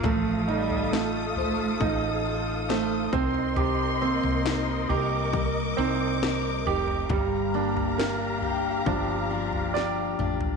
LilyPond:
<<
  \new Staff \with { instrumentName = "String section" } { \time 4/4 \key g \minor \tempo 4 = 68 << { ees'''2.~ ees'''8 c'''8~ | c'''4. d'''2~ d'''8 | bes''1 | } \\ { <a' f''>2.~ <a' f''>8 <bes' ees''>8~ | <bes' ees''>1 | <g' f''>1 | } >> }
  \new Staff \with { instrumentName = "Steel-string acoustic guitar" } { \time 4/4 \key g \minor a8 ees'8 f'8 c''8 ees'8 f'8 c''8 c8 | c8 bes8 ees'8 bes'8 g8 ees'8 bes'8 ees'8 | g,8 bes8 d'8 g'8 f8 d'8 g'8 d'8 | }
  \new Staff \with { instrumentName = "Grand piano" } { \time 4/4 \key g \minor a8 ees'8 a4 ees'4 a8 c'8 | g'8 c'4 g'4 c'4 g'8 | g8 d'8 bes'4 d'4 d''4 | }
  \new Staff \with { instrumentName = "Cello" } { \clef bass \time 4/4 \key g \minor f8 g8 a4. r4. | r1 | r1 | }
  \new Staff \with { instrumentName = "Fretless electric bass" } { \clef bass \time 4/4 \key g \minor a,,2 a,,4. c,8~ | c,8. c,8. c,4 c,4 f,,8 | g,,2 g,,4. a,,8 | }
  \new DrumStaff \with { instrumentName = "Drums" } \drummode { \time 4/4 <bd tomfh>8. tomfh16 sn8 tomfh8 <bd tomfh>4 sn8 <bd tomfh>16 tomfh16 | tomfh8. tomfh16 sn8 tomfh8 <bd tomfh>4 sn8 tomfh16 tomfh16 | <bd tomfh>8. tomfh16 sn8 tomfh8 <bd tomfh>8. tomfh16 sn8 toml16 tomfh16 | }
>>